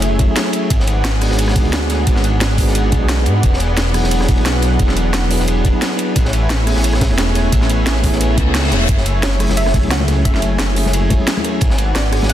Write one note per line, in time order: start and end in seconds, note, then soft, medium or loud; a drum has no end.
0.00 0.27 F#1 medium
0.00 0.25 F#3 medium
0.00 0.26 A3 medium
0.00 0.68 A3 medium
0.00 0.27 C#4 medium
0.00 0.27 E4 medium
0.00 0.28 G#4 loud
0.00 6.12 G#4 medium
0.00 0.68 C#5 medium
0.00 0.68 E5 medium
0.00 closed hi-hat loud
0.00 ride medium
0.19 kick loud
0.19 closed hi-hat medium
0.19 ride medium
0.26 0.68 F#3 medium
0.26 0.69 A3 medium
0.26 0.70 C#4 medium
0.26 0.70 E4 medium
0.31 0.71 G#4 medium
0.36 snare loud
0.36 closed hi-hat loud
0.36 ride medium
0.46 cross-stick soft
0.53 closed hi-hat medium
0.53 ride medium
0.70 1.29 G#1 loud
0.70 8.85 B4 medium
0.70 6.12 D5 medium
0.70 6.12 F#5 medium
0.70 kick loud
0.70 closed hi-hat medium
0.70 ride medium
0.80 snare medium
0.87 closed hi-hat medium
0.87 ride medium
1.05 snare loud
1.05 closed hi-hat medium
1.05 ride medium
1.19 1.61 G#3 medium
1.19 1.62 B3 medium
1.19 1.63 D4 medium
1.19 1.64 F#4 medium
1.19 cross-stick soft
1.19 closed hi-hat medium
1.19 open hi-hat medium
1.24 1.64 G#4 loud
1.31 1.66 G#1 medium
1.31 snare medium
1.39 closed hi-hat loud
1.39 ride loud
1.48 cross-stick soft
1.48 snare medium
1.55 kick loud
1.55 closed hi-hat medium
1.55 ride medium
1.62 2.06 D2 loud
1.62 2.55 G#3 medium
1.62 2.55 B3 medium
1.62 2.56 D4 medium
1.62 2.57 F#4 medium
1.62 ride soft
1.67 2.57 G#4 medium
1.72 snare loud
1.72 closed hi-hat medium
1.72 ride medium
1.90 snare soft
1.90 closed hi-hat medium
1.90 ride medium
2.07 2.66 G#1 loud
2.07 kick loud
2.07 closed hi-hat medium
2.07 ride medium
2.16 snare soft
2.24 closed hi-hat medium
2.24 ride medium
2.41 snare loud
2.41 closed hi-hat medium
2.41 ride medium
2.56 2.98 G#3 medium
2.56 2.99 B3 medium
2.56 2.99 D4 medium
2.56 3.00 F#4 medium
2.56 kick medium
2.56 open hi-hat medium
2.56 ride medium
2.60 3.01 G#4 loud
2.67 2.92 G#1 medium
2.67 snare soft
2.75 closed hi-hat loud
2.75 ride loud
2.92 3.28 B1 loud
2.92 kick loud
2.92 closed hi-hat medium
2.92 ride medium
2.99 3.41 G#3 medium
2.99 3.42 B3 medium
2.99 3.42 D4 medium
2.99 3.43 F#4 medium
3.04 3.44 G#4 loud
3.09 snare loud
3.09 closed hi-hat medium
3.09 ride medium
3.18 cross-stick soft
3.26 3.42 G#2 medium
3.26 closed hi-hat medium
3.26 ride medium
3.43 4.02 E1 loud
3.43 kick loud
3.43 closed hi-hat medium
3.43 ride medium
3.53 snare medium
3.60 closed hi-hat medium
3.60 ride medium
3.77 snare loud
3.77 closed hi-hat medium
3.77 ride medium
3.92 4.34 F#3 medium
3.92 4.35 B3 medium
3.92 4.36 D4 medium
3.92 4.36 E4 medium
3.92 cross-stick soft
3.92 closed hi-hat medium
3.92 open hi-hat medium
3.97 4.37 G#4 loud
4.04 4.39 E1 medium
4.04 snare medium
4.11 closed hi-hat loud
4.11 ride medium
4.21 cross-stick soft
4.21 snare soft
4.29 kick loud
4.29 closed hi-hat medium
4.29 ride medium
4.35 4.78 B1 loud
4.35 5.27 F#3 medium
4.35 5.28 B3 medium
4.35 5.29 D4 medium
4.35 5.29 E4 medium
4.35 ride medium
4.40 5.30 G#4 loud
4.46 snare loud
4.46 closed hi-hat medium
4.46 ride medium
4.62 snare soft
4.62 closed hi-hat medium
4.62 ride medium
4.79 5.38 E1 loud
4.79 kick loud
4.79 closed hi-hat medium
4.79 ride medium
4.89 snare soft
4.97 closed hi-hat medium
4.97 ride medium
5.14 snare loud
5.14 closed hi-hat medium
5.14 ride medium
5.28 5.70 F#3 medium
5.28 5.72 B3 medium
5.28 5.72 D4 medium
5.28 5.73 E4 medium
5.28 open hi-hat medium
5.28 ride medium
5.33 5.73 G#4 loud
5.40 5.73 E1 medium
5.40 snare soft
5.48 closed hi-hat loud
5.48 ride medium
5.65 kick loud
5.65 closed hi-hat medium
5.65 ride medium
5.72 6.14 F#3 medium
5.72 6.14 B3 medium
5.72 6.15 D4 medium
5.72 6.16 E4 medium
5.76 6.16 G#4 medium
5.82 snare loud
5.82 closed hi-hat loud
5.82 ride medium
5.91 cross-stick soft
5.99 closed hi-hat medium
5.99 ride medium
6.16 6.75 A1 loud
6.16 11.57 C#5 medium
6.16 11.57 E5 medium
6.16 8.86 G#5 medium
6.16 kick loud
6.16 closed hi-hat medium
6.16 ride medium
6.25 snare medium
6.33 closed hi-hat medium
6.33 ride medium
6.50 snare loud
6.50 closed hi-hat loud
6.50 ride medium
6.65 7.07 A3 medium
6.65 7.08 B3 medium
6.65 7.08 C#4 medium
6.65 7.09 E4 medium
6.65 cross-stick soft
6.65 closed hi-hat medium
6.65 open hi-hat medium
6.69 7.10 G#4 loud
6.76 7.12 A1 medium
6.76 snare medium
6.84 closed hi-hat loud
6.84 ride loud
6.93 cross-stick soft
6.93 snare medium
7.01 kick loud
7.01 snare loud
7.01 closed hi-hat medium
7.01 ride medium
7.08 7.51 E1 loud
7.08 8.00 A3 medium
7.08 8.01 B3 medium
7.08 8.02 C#4 medium
7.08 8.02 E4 medium
7.08 ride soft
7.13 8.03 G#4 medium
7.18 snare loud
7.18 closed hi-hat loud
7.18 ride medium
7.35 snare soft
7.35 closed hi-hat medium
7.35 ride medium
7.52 8.11 A1 loud
7.52 kick loud
7.52 closed hi-hat loud
7.52 ride medium
7.62 snare soft
7.70 closed hi-hat medium
7.70 ride medium
7.86 snare loud
7.86 closed hi-hat loud
7.86 ride medium
8.01 8.43 A3 medium
8.01 8.44 B3 medium
8.01 8.45 C#4 medium
8.01 8.46 E4 medium
8.01 kick medium
8.01 open hi-hat medium
8.01 ride medium
8.06 8.46 G#4 loud
8.12 8.37 A1 medium
8.12 snare soft
8.21 closed hi-hat loud
8.21 ride medium
8.21 reverse cymbal medium
8.38 8.73 C#2 loud
8.38 kick loud
8.38 closed hi-hat medium
8.38 ride medium
8.44 8.87 A3 medium
8.44 8.87 B3 medium
8.44 8.88 C#4 medium
8.44 8.88 E4 medium
8.49 8.89 G#4 medium
8.54 snare loud
8.54 snare medium
8.54 closed hi-hat loud
8.54 ride medium
8.59 snare medium
8.59 ride medium
8.63 cross-stick soft
8.63 snare medium
8.63 ride medium
8.68 8.87 E1 loud
8.68 snare loud
8.68 ride medium
8.72 snare loud
8.72 closed hi-hat medium
8.72 ride medium
8.89 9.48 F#1 loud
8.89 11.59 A3 medium
8.89 12.33 G#5 medium
8.89 kick loud
8.89 closed hi-hat loud
8.89 ride medium
8.97 snare medium
9.06 closed hi-hat medium
9.06 ride medium
9.23 9.55 C#5 medium
9.23 snare loud
9.23 closed hi-hat loud
9.23 ride medium
9.38 9.80 F#3 medium
9.38 9.81 A3 medium
9.38 9.81 C#4 medium
9.38 9.82 E4 medium
9.38 cross-stick medium
9.38 closed hi-hat medium
9.38 open hi-hat medium
9.42 9.82 G#4 loud
9.49 9.85 F#1 medium
9.49 snare medium
9.49 high conga medium
9.57 9.92 E5 loud
9.57 closed hi-hat loud
9.57 ride loud
9.66 cross-stick soft
9.66 snare medium
9.74 kick loud
9.74 closed hi-hat medium
9.74 ride medium
9.74 high conga medium
9.81 10.24 C#2 loud
9.81 10.73 F#3 medium
9.81 10.74 A3 medium
9.81 10.74 C#4 medium
9.81 10.75 E4 medium
9.81 ride soft
9.85 10.75 G#4 medium
9.91 10.26 F#5 loud
9.91 snare loud
9.91 closed hi-hat loud
9.91 ride medium
10.00 high conga loud
10.08 snare soft
10.08 closed hi-hat medium
10.08 ride medium
10.08 high bongo soft
10.25 10.84 F#1 loud
10.25 11.23 E5 medium
10.25 kick loud
10.25 closed hi-hat medium
10.25 ride medium
10.34 snare soft
10.42 closed hi-hat medium
10.42 ride medium
10.58 snare loud
10.58 closed hi-hat medium
10.58 ride medium
10.74 11.16 F#3 medium
10.74 11.17 A3 medium
10.74 11.18 C#4 medium
10.74 11.18 E4 medium
10.74 open hi-hat medium
10.74 ride medium
10.74 high bongo soft
10.78 11.19 G#4 loud
10.85 11.18 F#1 medium
10.85 snare soft
10.85 high conga medium
10.93 closed hi-hat loud
10.93 ride loud
11.10 kick loud
11.10 closed hi-hat medium
11.10 ride medium
11.10 high conga medium
11.17 11.59 F#3 medium
11.17 11.60 A3 medium
11.17 11.60 C#4 medium
11.17 11.61 E4 medium
11.21 11.62 G#4 medium
11.27 snare loud
11.27 closed hi-hat loud
11.27 ride medium
11.37 cross-stick soft
11.37 high conga loud
11.44 closed hi-hat medium
11.44 ride medium
11.44 high bongo medium
11.61 12.20 G#1 medium
11.61 12.33 B4 medium
11.61 12.33 D5 medium
11.61 12.33 F#5 medium
11.61 kick loud
11.61 closed hi-hat medium
11.61 ride loud
11.70 snare medium
11.78 closed hi-hat medium
11.78 ride medium
11.95 12.27 D5 loud
11.95 snare loud
11.95 closed hi-hat medium
11.95 ride medium
12.10 12.33 G#3 medium
12.10 12.33 B3 medium
12.10 12.33 D4 medium
12.10 12.33 F#4 medium
12.10 cross-stick medium
12.10 closed hi-hat medium
12.10 open hi-hat medium
12.15 12.33 G#4 loud
12.22 12.33 G#1 medium
12.22 snare medium
12.22 high conga medium
12.29 12.33 F#5 loud
12.29 closed hi-hat loud
12.29 ride loud